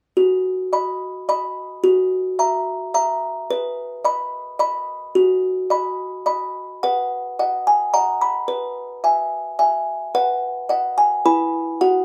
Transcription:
music box
0.17 F#4
0.73 D#5 B5
1.29 D#5 B5
1.84 F#4
2.39 E5 A#5
2.94 E5 A#5
3.51 B4
4.05 D#5 B5
4.59 D#5 B5
5.15 F#4
5.70 D#5 B5
6.26 D#5 B5
6.83 B4 F#5
7.39 D#5 F#5
7.67 G#5
7.94 D#5 F#5 A#5
8.21 B5
8.48 B4
9.04 E5 G#5
9.59 E5 G#5
10.15 B4 F#5
10.69 D#5 F#5
10.98 G#5
11.25 E4 B4 G#5 B5
11.81 F#4 F#5

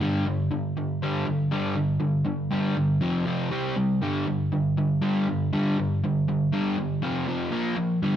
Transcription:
overdriven electric guitar
0.01 G2 D3 G3
0.26 G2 D3
0.51 G2 D3
0.77 G2 D3
1.02 G2 D3 G3
1.26 G2 D3
1.51 G2 D3 G3
1.76 G2 D3
2.00 G2 D3
2.25 G2 D3
2.51 G2 D3 G3
2.76 G2 D3
3.01 F2 C3 F3
3.26 F2 C3 F3
3.51 C3 G3 C4
3.77 C3 G3
4.02 G2 D3 G3
4.27 G2 D3
4.52 G2 D3
4.77 G2 D3
5.02 G2 D3 G3
5.28 G2 D3
5.53 G2 D3 G3
5.78 G2 D3
6.04 G2 D3
6.28 G2 D3
6.52 G2 D3 G3
6.78 G2 D3
7.02 F2 C3 F3
7.27 F2 C3 F3
7.51 A#2 F3 A#3
7.76 A#2 F3
8.03 G2 D3 G3

